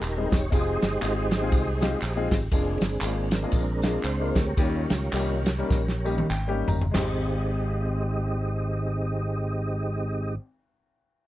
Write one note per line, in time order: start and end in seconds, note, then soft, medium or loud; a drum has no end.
0.00 0.27 D#1 medium
0.00 0.49 D#4 medium
0.00 0.49 G4 medium
0.00 0.29 A#4 loud
0.00 clap medium
0.00 ride medium
0.00 tambourine medium
0.17 0.37 G3 medium
0.17 0.37 G#3 medium
0.17 0.37 C4 medium
0.17 0.38 D#4 medium
0.17 0.37 G#4 medium
0.32 0.49 E1 medium
0.32 0.53 C#5 loud
0.32 kick medium
0.32 snare loud
0.32 ride medium
0.32 tambourine medium
0.50 0.77 F1 loud
0.50 0.81 G#3 medium
0.50 1.81 G#3 medium
0.50 0.81 C4 medium
0.50 0.82 D#4 medium
0.50 1.81 D#4 medium
0.50 0.82 F4 medium
0.50 2.48 G4 medium
0.50 0.82 G#4 medium
0.50 2.28 G#4 medium
0.50 2.28 C5 medium
0.50 2.28 D#5 loud
0.50 kick loud
0.50 ride medium
0.50 tambourine medium
0.82 0.99 G1 medium
0.82 snare loud
0.82 ride medium
0.82 tambourine medium
1.00 1.52 G#1 medium
1.00 1.24 G#3 medium
1.00 1.24 C4 medium
1.00 1.24 D#4 medium
1.00 1.24 F4 medium
1.00 1.24 G#4 medium
1.00 clap loud
1.00 ride medium
1.00 tambourine loud
1.31 snare loud
1.31 ride medium
1.31 tambourine soft
1.41 1.59 G#3 medium
1.41 1.59 C4 medium
1.41 1.60 D#4 medium
1.41 1.60 F4 medium
1.41 1.60 G#4 loud
1.52 1.94 C2 loud
1.52 kick loud
1.52 ride medium
1.52 tambourine medium
1.81 1.99 G3 medium
1.81 1.96 G#3 loud
1.81 2.00 G#3 soft
1.81 1.97 C4 medium
1.81 1.96 D#4 medium
1.81 2.00 D#4 medium
1.81 1.97 F4 medium
1.81 1.97 G4 loud
1.81 snare loud
1.81 ride medium
1.81 tambourine medium
2.02 2.27 A#1 medium
2.02 clap medium
2.02 ride medium
2.02 tambourine medium
2.16 2.36 G#3 medium
2.16 2.36 C4 medium
2.16 2.37 D#4 medium
2.16 2.37 F4 medium
2.16 2.37 G#4 loud
2.31 2.48 G#1 medium
2.31 kick medium
2.31 snare loud
2.31 ride medium
2.31 tambourine medium
2.52 2.77 F1 loud
2.52 2.82 G#3 medium
2.52 4.54 G#3 medium
2.52 2.82 A#3 medium
2.52 4.54 C4 medium
2.52 2.82 D4 medium
2.52 3.31 D4 medium
2.52 2.82 F4 medium
2.52 2.82 G#4 medium
2.52 3.29 G#4 medium
2.52 kick loud
2.52 ride medium
2.52 tambourine medium
2.81 2.98 G1 medium
2.81 snare loud
2.81 ride medium
2.81 tambourine medium
3.01 3.44 G#1 medium
3.01 3.24 G#3 medium
3.01 3.24 A#3 medium
3.01 3.25 D4 medium
3.01 3.25 F4 medium
3.01 3.25 G#4 medium
3.01 clap loud
3.01 ride medium
3.01 tambourine loud
3.31 4.32 D4 medium
3.31 4.01 A#4 loud
3.31 snare loud
3.31 ride medium
3.31 tambourine medium
3.42 3.60 G#3 medium
3.42 3.60 A#3 medium
3.42 3.60 D4 medium
3.42 3.61 F4 medium
3.42 3.61 G#4 medium
3.52 3.97 A#1 loud
3.52 kick loud
3.52 ride medium
3.52 tambourine medium
3.82 3.99 G#3 medium
3.82 3.99 A#3 medium
3.82 4.00 D4 medium
3.82 4.00 F4 medium
3.82 4.00 G#4 medium
3.82 snare loud
3.82 ride medium
3.82 tambourine medium
4.04 4.31 C#2 medium
4.04 4.37 C5 loud
4.04 clap medium
4.04 ride medium
4.04 tambourine medium
4.20 4.41 G#3 medium
4.20 4.42 A#3 medium
4.20 4.42 D4 medium
4.20 4.42 F4 medium
4.20 4.42 A#4 medium
4.36 4.54 D2 loud
4.36 6.27 G4 medium
4.36 6.27 A#4 medium
4.36 6.27 C#5 loud
4.36 kick medium
4.36 snare loud
4.36 ride medium
4.36 tambourine medium
4.57 4.85 D#2 loud
4.57 5.43 D#3 medium
4.57 4.90 G3 medium
4.57 5.43 G3 medium
4.57 4.90 A#3 medium
4.57 4.91 C#4 medium
4.57 5.43 C#4 medium
4.57 4.91 D#4 medium
4.57 5.43 F4 medium
4.57 4.91 G4 medium
4.57 kick loud
4.57 ride medium
4.57 tambourine medium
4.90 5.09 C#2 medium
4.90 snare loud
4.90 ride medium
4.90 tambourine medium
5.12 5.62 C2 medium
5.12 5.38 G3 medium
5.12 5.39 A#3 medium
5.12 5.39 C#4 medium
5.12 5.39 D#4 medium
5.12 5.39 G4 medium
5.12 clap loud
5.12 ride medium
5.12 tambourine loud
5.46 snare loud
5.46 ride medium
5.46 tambourine medium
5.58 5.79 G3 medium
5.58 5.79 A#3 medium
5.58 5.79 C#4 medium
5.58 5.79 D#4 medium
5.58 5.80 A#4 medium
5.71 6.22 A#1 loud
5.71 kick loud
5.71 snare medium
5.71 tambourine medium
5.88 snare medium
6.04 6.24 G3 medium
6.04 6.24 A#3 medium
6.04 6.24 C#4 medium
6.04 6.25 D#4 medium
6.04 6.25 G4 loud
6.04 6.29 D#5 medium
6.04 tambourine medium
6.18 high tom medium
6.29 6.62 G#1 loud
6.29 6.65 G5 medium
6.29 clap medium
6.29 tambourine medium
6.48 6.74 G3 medium
6.48 6.74 A#3 medium
6.48 6.75 C#4 medium
6.48 6.75 D#4 medium
6.48 6.75 G4 loud
6.68 6.91 G1 loud
6.68 6.92 A#5 medium
6.68 floor tom loud
6.68 tambourine medium
6.81 floor tom loud
6.91 10.36 G#1 loud
6.91 10.37 G#1 medium
6.91 10.33 G#3 medium
6.91 10.35 G#3 medium
6.91 10.35 C4 medium
6.91 10.35 D#4 medium
6.91 10.35 G4 medium
6.91 10.35 D#5 medium
6.91 snare loud
6.91 clap medium
6.91 floor tom loud
6.91 crash medium
6.96 10.38 D#4 medium
6.96 10.40 G4 medium